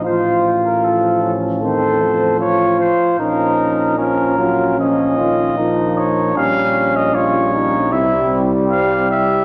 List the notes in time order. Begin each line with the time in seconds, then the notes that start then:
Already playing: F3
0.04 A1 F4 C5
0.65 A#4
0.83 F3 F4 A4
1.23 C#4
1.62 D#3 C4 A4 C5
2.01 F3
2.40 F4 C#5
2.80 C5
3.19 A#1 F3 C#4 D#4 A#4
3.98 F3 C#4 A#4
4.38 F#3 F4
4.79 F3 C#4 D#5
5.18 D#3 F4
5.58 F3 A#3 D#4
5.98 C#5
6.36 A#1 G3 C#4 F5
6.96 D#5
7.14 G3 C#4 F4 C#5
7.54 D#4
7.92 C2 G3 C4 E4 E5
8.71 G4 F5
9.11 E5